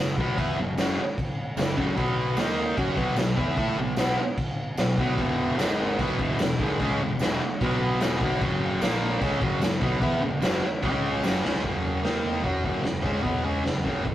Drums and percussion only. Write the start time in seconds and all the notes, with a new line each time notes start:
0.18 kick
0.38 kick, crash
0.77 snare, tambourine, crash
1.18 kick, crash
1.57 snare, tambourine, crash
1.78 kick
1.97 kick, crash
2.37 snare, tambourine, crash
2.78 kick, crash
2.97 kick
3.16 snare, tambourine, crash
3.37 kick
3.57 kick, crash
3.96 snare, tambourine, crash
4.38 kick, crash
4.77 snare, tambourine, crash
4.98 kick
5.18 kick, crash
5.59 snare, tambourine, crash
5.99 kick, crash
6.19 kick
6.39 snare, tambourine, crash
6.60 kick
6.80 kick, crash
7.19 snare, tambourine, crash
7.61 kick, crash
8.00 snare, tambourine, crash
8.21 kick
8.41 kick, crash
8.81 snare, tambourine, crash
9.21 kick, crash
9.42 kick
9.62 snare, tambourine, crash
9.82 kick
10.01 kick, crash
10.42 snare, tambourine, crash
10.83 kick, crash
11.24 snare, tambourine
11.45 snare
11.54 snare
11.64 kick, floor tom
11.84 floor tom
12.04 snare, floor tom
12.24 floor tom
12.44 kick, floor tom
12.64 kick, floor tom
12.84 snare, floor tom
13.04 kick, floor tom
13.25 kick, floor tom
13.45 floor tom
13.65 snare, floor tom
13.85 kick, floor tom
14.05 kick, floor tom